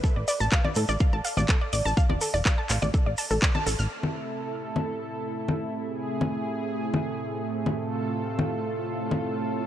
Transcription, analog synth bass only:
\new Staff \with { instrumentName = "Analog synth bass" } { \clef bass \time 4/4 \key a \minor \tempo 4 = 124 r16 a,,16 r16 a,,16 r8 a,16 a,,16 r16 a,,16 r16 a,,16 r8 a,,16 a,,16 | r16 e,,16 r16 e,,16 r8 a,,16 a,,16 r16 a,,16 r16 a,,16 r8 a,,16 a,,16 | r1 | r1 |
r1 | }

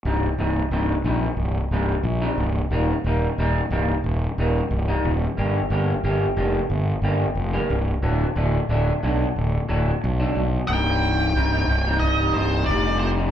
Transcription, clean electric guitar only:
\new Staff \with { instrumentName = "Clean electric guitar" } { \clef bass \time 4/4 \key c \minor \tempo 4 = 90 <g, c g ees'>16 r16 <g, c g ees'>16 r16 <g, c g ees'>16 r16 <g, c g ees'>16 r8. <g, c g ees'>16 r8 <g, c g ees'>16 r8 | <ees g bes ees'>16 r16 <ees g bes ees'>16 r16 <ees g bes ees'>16 r16 <ees g bes ees'>16 r8. <ees g bes ees'>16 r8 <ees g bes ees'>16 r8 | <g bes d' g'>16 r16 <g bes d' g'>16 r16 <g bes d' g'>16 r16 <g bes d' g'>16 r8. <g bes d' g'>16 r8 <g bes d' g'>16 r8 | <d fis a d'>16 r16 <d fis a d'>16 r16 <d fis a d'>16 r16 <d fis a d'>16 r8. <d fis a d'>16 r8 <d fis a d'>16 r8 |
<c, g, c g ees'>16 <c g ees'>8. <c, g, c g ees'>16 <c g ees'>8 <c g ees'>8 <c g ees'>16 <g, c g ees'>8 <c, g, c g ees'>16 <c g ees'>16 <g, c g ees'>16 <c g ees'>16 | }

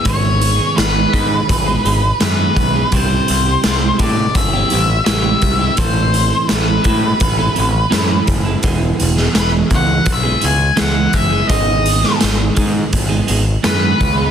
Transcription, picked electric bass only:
\new Staff \with { instrumentName = "Picked electric bass" } { \clef bass \time 4/4 \key gis \phrygian \tempo 4 = 84 gis,,4 gis,,8 gis,8 gis,,8 gis,,8 fis,8 b,,8 | c,8 c,8 c,8 a,8 g,,8 a,,8 a,,8 c,8 | a,,4 a,,8 a,8 a,,8 a,,8 fis,8 fis,,8 | e,,8 e,,8 e,,8 cis,8 b,,8 cis,8 cis,8 fis,,8 |
gis,,4 gis,,8 gis,8 gis,,8 gis,,8 fis,8 cis,8 | }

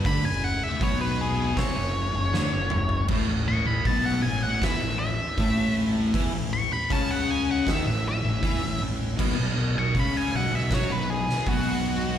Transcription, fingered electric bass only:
\new Staff \with { instrumentName = "Fingered electric bass" } { \clef bass \time 4/4 \key a \lydian \tempo 4 = 79 d,16 fis,,8 r16 b,,4 bis,,16 fis,,8 fis,,16 d,16 fis,,16 fis,,8 | a,,16 a,,16 a,,16 a,,16 b,,8 a,,16 a,,16 e,16 a,,8 r16 a,,4 | e,16 a,,8 r16 cis,4 dis,16 a,,8 a,,16 e,16 a,,16 a,,8 | b,,16 b,,16 b,,16 b,,16 cis,8 b,,16 b,,16 fis,16 b,,8 r16 b,,4 | }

